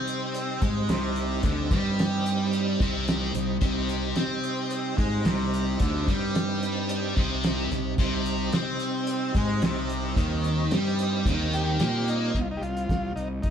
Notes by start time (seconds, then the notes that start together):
Already playing: C3 G3 C4 D#4 C5 D#5
0.07 closed hi-hat
0.34 closed hi-hat
0.62 G#2 G#3, kick, closed hi-hat
0.89 C2 C3, snare, closed hi-hat
1.16 closed hi-hat
1.43 D2 D3, kick, closed hi-hat
1.71 G2 G3, kick, closed hi-hat
1.99 snare, closed hi-hat
2.26 closed hi-hat
2.53 closed hi-hat
2.80 C2 C3, kick, closed hi-hat
3.08 snare, closed hi-hat
3.23 snare
3.35 C2 C3, closed hi-hat
3.61 C2 C3, kick, closed hi-hat
3.89 closed hi-hat
4.16 C3 C4, snare, closed hi-hat
4.44 closed hi-hat
4.71 closed hi-hat
4.98 G#2 G#3, kick, closed hi-hat
5.25 C2 C3, snare, closed hi-hat
5.41 snare
5.54 closed hi-hat
5.80 D2 D3, kick, closed hi-hat
6.08 G2 G3, kick, closed hi-hat
6.35 snare, closed hi-hat
6.63 closed hi-hat
6.89 closed hi-hat
7.16 C2 C3, kick, closed hi-hat
7.44 snare, closed hi-hat
7.71 C2 C3, closed hi-hat
7.98 C2 C3, kick, closed hi-hat
8.25 closed hi-hat
8.53 C3 C4, snare, closed hi-hat
8.80 closed hi-hat
9.07 closed hi-hat
9.35 G#2 G#3, kick, closed hi-hat
9.62 C2 C3, snare, closed hi-hat
9.77 snare
9.90 closed hi-hat
10.16 D#2 D#3, kick, closed hi-hat
10.44 closed hi-hat
10.71 G2 G3, snare, closed hi-hat
10.99 closed hi-hat
11.26 D#2 D#3, kick, closed hi-hat
11.53 G4, closed hi-hat
11.80 A#2 A#3, snare, closed hi-hat
12.08 D#4, closed hi-hat
12.35 C2 D#4, kick, closed hi-hat
12.41 F4
12.51 D#4
12.57 G4
12.61 C2 F4, closed hi-hat
12.77 closed hi-hat
12.89 C2, kick, snare, closed hi-hat
13.16 C2 D#4, closed hi-hat
13.42 C2 D#4, kick, closed hi-hat